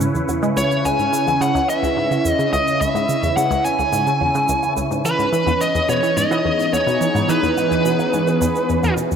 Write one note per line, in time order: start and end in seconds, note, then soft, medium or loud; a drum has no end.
0.00 0.07 G#2 medium
0.00 5.05 C#3 medium
0.00 6.84 C#4 medium
0.00 9.16 C#4 medium
0.00 5.05 E4 medium
0.00 6.42 B4 medium
0.00 9.16 C#5 medium
0.00 cabasa medium
0.14 0.21 E2 medium
0.14 cabasa soft
0.29 0.39 E2 medium
0.29 cabasa medium
0.29 low woodblock soft
0.43 0.49 G#3 medium
0.43 cabasa soft
0.57 0.61 C#2 loud
0.57 0.86 C#5 medium
0.57 cabasa medium
0.71 cabasa soft
0.85 0.89 C#2 medium
0.85 1.43 G#5 loud
0.85 cabasa medium
0.85 low woodblock soft
0.99 1.09 G#2 medium
0.99 cabasa soft
1.13 1.19 C#3 medium
1.13 cabasa medium
1.27 1.34 E2 medium
1.27 cabasa soft
1.27 low woodblock soft
1.41 1.51 C#3 loud
1.41 1.67 F#5 medium
1.41 cabasa medium
1.55 1.59 C#2 medium
1.55 cabasa soft
1.69 2.28 E5 medium
1.69 cabasa medium
1.69 low woodblock soft
1.83 1.87 C#2 medium
1.83 cabasa soft
1.97 2.07 G#2 medium
2.11 2.18 C#3 medium
2.11 cabasa soft
2.11 low woodblock soft
2.25 2.32 E2 medium
2.25 2.52 D#5 medium
2.25 cabasa medium
2.39 2.49 C#3 loud
2.39 cabasa soft
2.53 2.57 C#2 loud
2.53 2.81 D#5 medium
2.53 cabasa medium
2.53 low woodblock soft
2.68 cabasa soft
2.81 2.85 C#2 medium
2.81 3.36 E5 medium
2.81 cabasa medium
2.95 3.05 G#2 medium
2.95 cabasa soft
2.95 low woodblock soft
3.09 3.16 C#3 medium
3.09 cabasa medium
3.23 3.30 E2 medium
3.23 cabasa soft
3.37 3.47 C#3 medium
3.37 3.66 F#5 medium
3.37 cabasa medium
3.37 low woodblock soft
3.51 3.55 C#2 loud
3.51 cabasa soft
3.65 4.73 G#5 medium
3.65 cabasa medium
3.79 3.83 C#2 medium
3.79 cabasa soft
3.79 low woodblock soft
3.93 4.03 G#2 medium
3.93 cabasa medium
4.07 4.14 C#3 medium
4.07 cabasa soft
4.21 4.28 E2 medium
4.21 low woodblock soft
4.35 4.45 C#3 medium
4.35 cabasa soft
4.49 4.53 C#2 loud
4.49 cabasa medium
4.63 cabasa soft
4.63 low woodblock soft
4.77 4.81 C#2 medium
4.77 cabasa medium
4.91 5.01 G#2 medium
4.91 cabasa soft
5.05 5.12 E3 medium
5.05 9.16 E3 medium
5.05 5.63 B4 medium
5.05 cabasa medium
5.05 low woodblock soft
5.19 5.26 G#2 medium
5.19 cabasa soft
5.32 5.43 E3 loud
5.32 cabasa medium
5.46 5.51 E2 loud
5.46 cabasa soft
5.46 low woodblock soft
5.54 9.16 B3 medium
5.54 9.16 G#4 medium
5.61 5.87 D#5 loud
5.61 cabasa medium
5.75 5.79 E2 medium
5.75 cabasa soft
5.84 9.16 D#4 medium
5.89 5.99 B2 medium
5.89 6.17 C#5 medium
5.89 cabasa medium
5.89 low woodblock soft
6.03 6.10 E3 medium
6.03 cabasa soft
6.17 6.24 G#2 medium
6.17 6.73 D#5 loud
6.17 cabasa medium
6.31 6.41 E3 loud
6.31 cabasa soft
6.31 low woodblock soft
6.45 6.49 E2 loud
6.60 cabasa soft
6.73 6.77 E2 medium
6.73 7.31 C#5 medium
6.73 cabasa medium
6.73 low woodblock soft
6.87 6.97 B2 medium
6.87 cabasa soft
7.01 7.08 E3 medium
7.01 cabasa medium
7.15 7.22 G#2 medium
7.15 cabasa soft
7.15 low woodblock soft
7.29 7.39 E3 loud
7.29 8.94 B4 medium
7.29 cabasa medium
7.43 7.47 E2 loud
7.43 cabasa soft
7.58 cabasa medium
7.58 low woodblock soft
7.71 7.75 E2 medium
7.71 cabasa soft
7.85 7.96 B2 medium
7.85 cabasa medium
7.99 8.06 E3 medium
7.99 cabasa soft
7.99 low woodblock soft
8.13 8.20 G#2 medium
8.13 cabasa medium
8.27 8.38 E3 loud
8.27 cabasa soft
8.41 8.45 E2 loud
8.41 cabasa medium
8.41 low woodblock soft
8.56 cabasa soft
8.69 8.77 E2 medium
8.69 cabasa soft
8.83 8.90 E2 medium
8.83 cabasa soft
8.83 low woodblock soft
8.97 9.01 B2 medium
8.97 cabasa medium
9.11 9.16 E2 medium
9.11 cabasa soft